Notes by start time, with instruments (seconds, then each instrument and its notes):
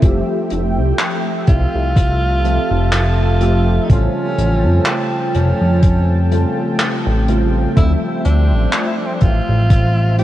0.01 analog synth bass F1, synth keys F3 A3 C4 G4 E5, analog synth pad F3 A4 E5 G5, kick, closed hi-hat
0.50 analog synth bass F1, closed hi-hat
0.78 analog synth bass C2
0.99 clap, closed hi-hat
1.47 analog synth bass C2, tenor saxophone F4, kick, closed hi-hat
1.75 analog synth bass C2
1.96 analog synth pad A5, kick, closed hi-hat
2.44 synth keys F3 A3 C4 G4 E5, closed hi-hat
2.71 analog synth bass F1
2.92 tenor saxophone F4, clap, closed hi-hat
3.40 synth keys F3 A3 C4 G4 E5, closed hi-hat
3.84 tenor saxophone D#4
3.88 analog synth bass A1, synth keys C#3 G3 A3 F4 C5, tenor saxophone C#4, analog synth pad G5 A5, kick, closed hi-hat
4.38 analog synth bass A1, closed hi-hat
4.64 analog synth bass F2
4.86 tenor saxophone C4, clap, closed hi-hat
5.35 analog synth bass F1, tenor saxophone C#4, closed hi-hat
5.61 analog synth bass F2
5.83 kick, closed hi-hat
6.31 synth keys C#3 G3 A3 C4 F4, closed hi-hat
6.80 clap, closed hi-hat
7.07 analog synth bass A1
7.28 synth keys C#3 G3 A3 C4 F4, closed hi-hat
7.75 analog synth bass D2, synth keys F3 G3 A3 C4 E5, tenor saxophone E4, analog synth pad C5 E5, kick, closed hi-hat
8.25 analog synth bass D2, tenor saxophone D4, closed hi-hat
8.52 analog synth bass A1
8.72 clap, closed hi-hat
8.87 tenor saxophone E4
8.97 tenor saxophone D4
9.06 tenor saxophone C4
9.14 tenor saxophone D4
9.21 analog synth bass A1, tenor saxophone F4, kick, closed hi-hat
9.49 analog synth bass A1
9.70 analog synth pad A5, kick, closed hi-hat
10.18 synth keys F3 G3 A3 C4 E4, tenor saxophone G4, closed hi-hat